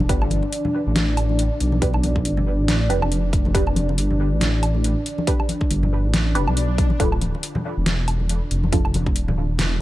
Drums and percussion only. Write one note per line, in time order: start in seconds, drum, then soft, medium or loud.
0.00 muted conga soft
0.00 high conga medium
0.09 kick loud
0.09 closed hi-hat medium
0.22 muted conga soft
0.22 low woodblock medium
0.30 closed hi-hat soft
0.30 high conga medium
0.43 muted conga medium
0.53 closed hi-hat medium
0.65 high conga medium
0.65 low conga medium
0.95 snare loud
0.95 closed hi-hat medium
0.95 muted conga soft
0.95 high conga medium
1.17 closed hi-hat soft
1.17 low woodblock soft
1.29 high conga medium
1.39 closed hi-hat medium
1.60 closed hi-hat soft
1.72 high conga medium
1.82 kick loud
1.82 closed hi-hat medium
1.94 muted conga medium
1.94 low woodblock soft
2.03 closed hi-hat soft
2.03 high conga medium
2.16 kick medium
2.16 muted conga medium
2.25 closed hi-hat medium
2.37 high conga medium
2.37 low conga medium
2.68 snare loud
2.68 closed hi-hat medium
2.68 high conga medium
2.90 closed hi-hat soft
3.02 high conga medium
3.02 low woodblock medium
3.12 closed hi-hat medium
3.33 kick loud
3.33 closed hi-hat soft
3.45 muted conga soft
3.45 high conga medium
3.55 kick loud
3.55 closed hi-hat medium
3.67 muted conga soft
3.67 low woodblock soft
3.76 closed hi-hat medium
3.76 high conga medium
3.89 muted conga medium
3.98 closed hi-hat medium
4.10 high conga medium
4.10 low conga medium
4.41 snare loud
4.41 closed hi-hat medium
4.41 muted conga soft
4.41 high conga medium
4.63 closed hi-hat medium
4.63 low woodblock soft
4.75 high conga medium
4.84 closed hi-hat medium
5.06 closed hi-hat soft
5.18 high conga medium
5.27 kick loud
5.27 closed hi-hat medium
5.40 muted conga soft
5.40 low woodblock soft
5.49 closed hi-hat medium
5.49 high conga medium
5.61 kick medium
5.61 muted conga medium
5.71 closed hi-hat medium
5.83 high conga medium
5.83 low conga medium
6.14 snare loud
6.14 closed hi-hat medium
6.14 high conga medium
6.35 closed hi-hat medium
6.47 high conga medium
6.47 low woodblock medium
6.57 closed hi-hat medium
6.78 kick loud
6.78 closed hi-hat medium
6.90 muted conga medium
6.90 high conga medium
7.00 kick loud
7.00 closed hi-hat medium
7.12 muted conga medium
7.12 low woodblock soft
7.21 closed hi-hat medium
7.21 high conga medium
7.35 muted conga medium
7.43 closed hi-hat medium
7.55 high conga medium
7.55 low conga medium
7.86 snare loud
7.86 closed hi-hat medium
7.86 muted conga soft
7.86 high conga medium
8.08 closed hi-hat medium
8.08 low woodblock soft
8.20 high conga medium
8.29 closed hi-hat medium
8.51 closed hi-hat medium
8.64 high conga medium
8.73 kick loud
8.73 closed hi-hat medium
8.85 muted conga medium
8.85 low woodblock soft
8.94 closed hi-hat soft
8.94 high conga medium
9.06 kick medium
9.06 muted conga medium
9.16 closed hi-hat medium
9.28 high conga medium
9.28 low conga medium
9.58 snare loud
9.58 closed hi-hat medium
9.58 high conga medium